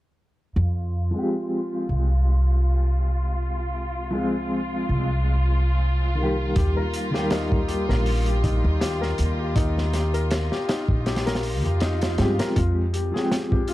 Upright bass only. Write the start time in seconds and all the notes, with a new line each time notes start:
0.56 F2
1.89 C2
4.89 C2
6.56 D#2
7.89 A#1
8.64 D#2
9.19 D#2
10.89 A#1
11.64 F2
12.19 G2
12.57 F2